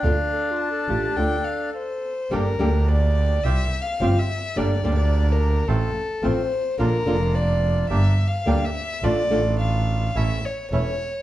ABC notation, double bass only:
X:1
M:4/4
L:1/8
Q:1/4=107
K:Dm
V:1 name="Double bass" clef=bass
D,, z2 A,,, D,, z3 | G,,, D,,3 C,, z G,,, z | G,,, D,,3 A,,, z A,,, z | B,,, F,,,3 G,,, z D,, z |
A,,, A,,,3 A,,, z E,,, z |]